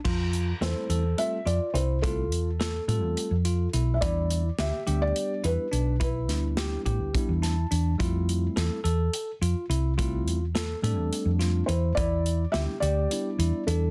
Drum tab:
CC |x------|-------|-------|-------|
HH |-xxxxxx|xxxxxxx|xxxxxxx|xxxxxxx|
SD |--o----|--o----|--o----|-oo--o-|
BD |o------|o------|o------|o--oo--|

CC |-------|-------|-------|
HH |xxxxxxx|xxxxxxx|xxxxxxx|
SD |--o----|--o--o-|--o----|
BD |o------|o------|o------|